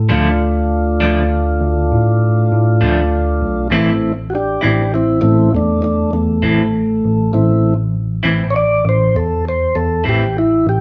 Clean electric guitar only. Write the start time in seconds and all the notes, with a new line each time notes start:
0.09 D3 F3 A3 D4
1.00 D3 F3 A3 D4
2.81 D3 F3 A3 D4
3.70 A2 E3 C4 E4
4.61 A2 E3 C4 E4
6.42 A2 E3 C4 E4
8.23 A2 E3 C4 E4
10.04 A2 E3 C4 E4